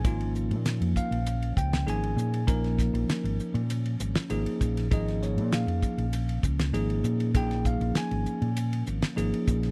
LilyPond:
<<
  \new Staff \with { instrumentName = "Tine electric piano" } { \time 4/4 \key bes \minor \tempo 4 = 99 << { aes''8 r4 f''4 g''8 aes''4~ | aes''8 r2. r8 | ees''8 des''8 f''4. r4. | g''8 f''8 aes''4. r4. | } \\ { <f bes ees' f'>2 r4 <f bes ees' aes'>4 | <f bes ees' bes'>2 r4 <f bes ees' aes'>4 | <f bes ees' aes'>2 r4 <f bes ees' aes'>4 | <f bes ees' aes'>2 r4 <f bes ees' aes'>4 | } >> }
  \new Staff \with { instrumentName = "Analog synth pad" } { \time 4/4 \key bes \minor <f bes des'>1~ | <f bes des'>1~ | <f bes des'>1~ | <f bes des'>1 | }
  \new Staff \with { instrumentName = "Fingered electric bass" } { \clef bass \time 4/4 \key bes \minor aes,,8. bes,8 f,16 r16 bes,,8. des,8 aes,,8 bes,8 | bes,,8. bes,,16 r16 aes,,16 r16 bes,8. aes,,16 r16 aes,,16 r16 bes,,8 | aes,,8. bes,8 f,16 r16 bes,,8. des,8 aes,,8 bes,8 | bes,,8. bes,,16 r16 aes,,16 r16 bes,8. aes,,16 r16 aes,,16 r16 bes,,8 | }
  \new DrumStaff \with { instrumentName = "Drums" } \drummode { \time 4/4 <hhp bd cymr>16 cymr16 hhp16 cymr16 <hhp cymr sn>16 cymr16 <hhp bd>16 cymr16 <hhp cymr>16 cymr16 <hhp bd>16 <cymr sn>16 <hhp cymr>16 cymr16 hhp16 cymr16 | <hhp bd cymr>16 <cymr sn>16 <hhp bd sn>16 cymr16 <hhp cymr sn>16 cymr16 hhp16 cymr16 <hhp cymr>16 cymr16 hhp16 <cymr sn>16 <hhp cymr>16 cymr16 <hhp bd>16 <cymr sn>16 | <hhp bd cymr>16 <cymr sn>16 <hhp sn>16 cymr16 <hhp cymr sn>16 cymr16 <hhp bd>16 cymr16 <hhp cymr>16 cymr16 <hhp bd>16 <cymr sn>16 <hhp cymr>16 cymr16 hhp16 cymr16 | <hhp bd cymr>16 <cymr sn>16 <hhp bd>16 cymr16 <hhp cymr sn>16 cymr16 hhp16 cymr16 <hhp cymr>16 cymr16 hhp16 <cymr sn>16 <hhp cymr>16 cymr16 <hhp bd>16 <cymr sn>16 | }
>>